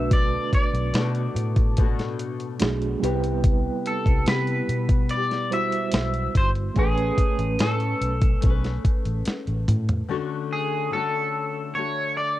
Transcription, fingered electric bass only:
Already playing: B1
0.74 B1
0.94 B2
1.35 A2
2.61 B1
3.03 C2
4.06 C2
4.27 C3
4.69 B2
5.93 B1
6.35 G1
6.77 A1
7.39 A1
7.60 A2
8.01 B1
8.44 B1
8.85 muted fingered electric bass stroke
9.06 A1
9.27 muted fingered electric bass stroke
9.47 A1
9.68 A2

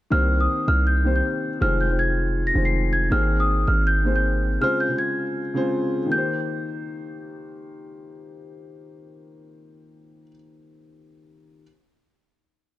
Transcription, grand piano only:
0.10 D#3 A#3 C4 G4 C5
1.04 D#3 A#3 C4 G4 C5
1.60 D#3 G#3 C4 F4 C5
1.89 D#3 G#3 C4 F4 C5
2.54 D#3 G#3 C4 F4 C5
3.10 D#3 A#3 C4 G#4 C5
4.04 D#3 A#3 C4 G#4 C5
4.60 C#3 G#3 C4 F4 C5
4.89 C#3 G#3 C4 F4 C5
5.54 C#3 G#3 C4 F4 C5
6.06 D#3 A#3
6.14 G4 C5

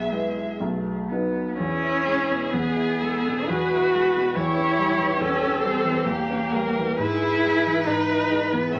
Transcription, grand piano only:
Already playing: B1 B2 G#3 E4 B4
0.12 G#3 E4 B4
0.60 B1 B2
1.11 F#3 D#4 B4
1.60 E2
1.83 E4
2.07 G#3
2.31 B2
2.53 E2
2.76 E4
3.02 G#3
3.28 B2
3.50 E2
3.73 E4
3.94 G#3
4.16 B2
4.36 E2
4.57 C#4
4.79 G3
4.98 E3
5.20 E2
5.41 C#4
5.64 G3
5.85 E3
6.06 E2
6.30 C#4
6.55 G3
6.79 E3
6.98 G#2
7.23 E4
7.45 G#3
7.66 E3
7.87 G#2
8.09 E4
8.30 G#3
8.53 E3
8.74 A2

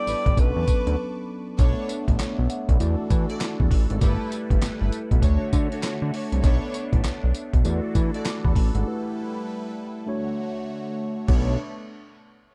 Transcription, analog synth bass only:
0.07 A1
0.26 A1
0.37 B1
0.56 E2
0.87 D2
1.59 B1
2.08 A1
2.20 B1
2.39 B1
2.69 B1
2.80 E2
3.10 E3
3.60 E2
3.71 A1
3.90 G#1
4.01 G1
4.50 G1
4.62 G1
4.81 G1
5.11 B1
5.22 D2
5.53 D3
6.02 D3
6.32 C2
6.44 B1
6.93 A1
7.04 B1
7.23 B1
7.53 B1
7.65 E2
7.95 E3
8.45 E2
8.56 A1
8.75 G#1
11.28 B1

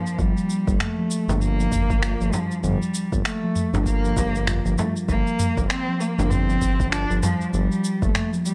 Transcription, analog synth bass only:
0.19 G1
0.67 G1
1.28 G1
1.72 G1
2.20 G1
2.63 G1
3.12 G1
3.73 G1
4.17 G1
4.65 G1
5.08 G1
5.57 G1
6.18 G1
6.62 G1
7.10 G1
7.53 G1
8.02 G1

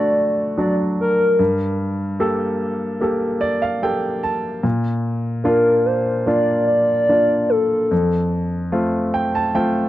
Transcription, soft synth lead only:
Already playing: D5
0.61 D5
1.01 A#4
5.47 A#4
5.86 C5
6.27 D5
6.66 D5
7.50 A4

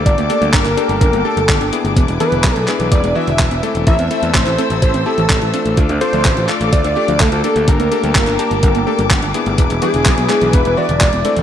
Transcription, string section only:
Already playing: D6
0.06 A#3 G5 A5
1.97 B4 E5 G#5
3.87 C5 A5 E6
5.77 A4 D5 F5 D6
7.68 A#3 G5 A5 D6
9.58 B4 E5 G#5

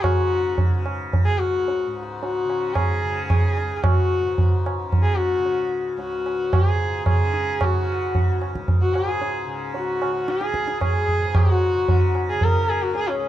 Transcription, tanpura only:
Already playing: C#2 G#2 C#3
0.09 C#3
0.68 C#3
1.28 C#2
1.86 G#2
2.45 C#3
3.03 C#3
3.62 C#2
4.20 G#2
4.79 C#3
5.38 C#3
5.97 C#2
6.55 G#2
7.14 C#3
7.72 C#3
8.30 C#2
8.88 G#2
9.46 C#3
10.03 C#3
10.60 C#2
11.18 G#2
11.76 C#3
12.34 C#3
12.92 C#2

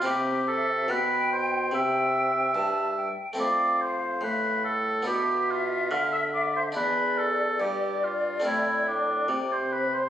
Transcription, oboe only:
0.06 G4
0.48 A4
0.90 B4
1.32 C5
1.75 E5
3.40 D5
3.81 C5
4.24 B4
4.65 A4
5.07 G4
5.50 F4
5.92 F5
6.13 E5
6.34 D5
6.57 C5
6.76 B4
7.18 A4
7.61 G4
8.03 F4
8.46 E4
8.88 D4
9.30 D5
9.52 C5
9.73 B4
9.94 C5

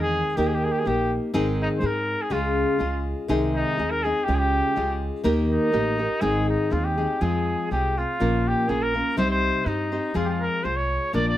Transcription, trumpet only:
0.01 G#4
0.37 G4
0.47 G#4
0.54 G4
0.64 G#4
0.71 G4
0.79 G#4
0.87 G4
1.62 D#4
1.78 C5
1.86 A#4
2.22 G#4
2.32 F4
3.55 D#4
3.91 A#4
4.03 G#4
4.24 G4
4.34 G#4
4.38 G4
5.50 D#4
6.21 G#4
6.49 D#4
6.72 F4
6.85 G4
7.21 G#4
7.71 G4
7.98 F4
8.48 G4
8.68 G#4
8.82 A#4
9.18 C5
9.31 C5
9.66 D#4
10.16 F4
10.25 F4 G4
10.40 A#4
10.64 C5
10.76 C#5
11.15 D5
11.28 D5

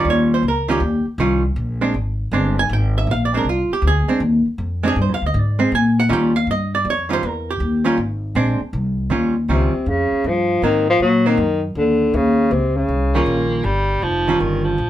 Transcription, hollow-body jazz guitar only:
Already playing: D#3 G3 C#4 F4
0.10 C#5
0.34 C5
0.48 A#4
0.68 D#3 G3 C#4 F4 G4
1.20 D#3 G3 C#4 F4
1.81 G#3 C4 D4
2.33 G#3 C4 D4
2.59 G#5
2.73 G5
2.98 E5
3.11 F5
3.25 D5
3.34 G#3 C4 D4 A#4
3.49 F4
3.73 G4
3.87 G#4
4.08 G#3 C4 D4
4.83 G#3 C4 D4
4.88 G#4
5.02 C5
5.14 F5
5.26 D#5
5.40 D5
5.59 G#3 C4
5.75 G#5
6.00 F#5
6.09 D#3 G3 C#4 F4 G5
6.36 F5
6.51 D#5
6.75 D5
6.90 C#5
7.09 D#3 G3 C#4 F4
7.13 C5
7.27 A#4
7.51 G4
7.84 D#3 G3 C#4 F4
8.36 G#3 C4 D4
9.10 D#3 G3 C#4 F4
9.49 D#3 G3 C#4 F4
10.63 F#3 A#3 C4
11.26 F#3 A#3 C4
13.15 D#3 G3 C#4 F4
14.28 D#3 G3 C#4 F4

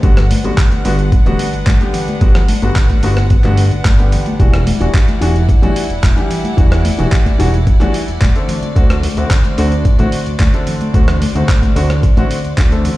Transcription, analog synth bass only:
0.03 G1
0.44 G1
0.85 G1
1.26 D1
1.54 G1
1.67 G1
2.21 G1
2.62 G1
3.03 G1
3.44 G2
3.72 G1
3.85 G1
4.40 E1
4.81 E1
5.21 E1
5.63 B1
5.90 E1
6.03 E1
6.58 E1
6.99 E1
7.40 E1
7.81 B1
8.08 E1
8.22 E1
8.76 D2
9.17 D2
9.58 D2
9.85 A1
9.99 A1
10.27 D2
10.40 D2
10.94 D2
11.35 D2
11.76 D2
12.17 A1
12.44 D2
12.58 D2

